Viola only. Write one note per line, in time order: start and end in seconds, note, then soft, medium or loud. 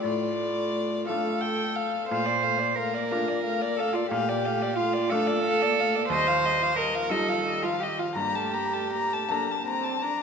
0.03 1.05 A3 medium
1.08 1.89 A3 medium
2.10 2.28 A3 medium
2.26 2.45 A#3 medium
2.43 2.61 A3 medium
2.60 2.76 A#3 medium
2.77 2.95 A3 medium
2.94 3.13 A#3 medium
3.12 3.30 A3 medium
3.29 3.44 A#3 medium
3.45 3.63 A3 medium
3.62 3.80 A#3 medium
3.79 3.96 A3 medium
3.94 4.10 A#3 medium
4.11 4.30 A3 medium
4.29 4.47 A#3 medium
4.46 4.64 A3 medium
4.62 4.78 A#3 medium
4.79 4.96 A3 medium
4.95 5.12 A#3 medium
5.11 5.30 A3 medium
5.28 5.44 A#3 medium
5.45 5.63 A3 medium
5.62 5.79 A#3 medium
5.78 5.95 A3 medium
5.94 6.10 A#3 medium
6.11 6.29 G3 medium
6.28 6.46 F3 medium
6.45 6.63 G3 medium
6.61 6.77 F3 medium
6.78 6.96 G3 medium
6.95 7.13 F3 medium
7.12 7.30 G3 medium
7.29 7.44 F3 medium
7.45 7.65 G3 medium
7.63 7.82 F3 medium
7.81 8.00 G3 medium
7.99 8.16 F3 medium
8.17 8.37 A#3 medium
8.36 8.55 A3 medium
8.54 8.74 A#3 medium
8.72 8.91 A3 medium
8.92 9.13 A#3 medium
9.11 9.29 A3 medium
9.30 9.64 A#3 medium
9.67 10.05 C4 medium
10.04 10.23 D4 medium